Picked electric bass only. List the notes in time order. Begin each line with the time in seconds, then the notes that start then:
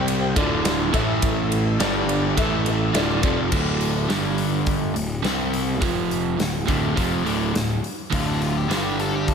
Already playing: C2
0.36 D1
0.93 A1
1.80 G1
2.37 A1
2.94 D1
3.23 F1
3.52 D1
4.09 G1
4.95 D1
5.24 C2
5.82 F1
6.38 D1
6.68 D1
6.97 F1
7.25 D1
7.54 D1
8.12 D1
8.68 G1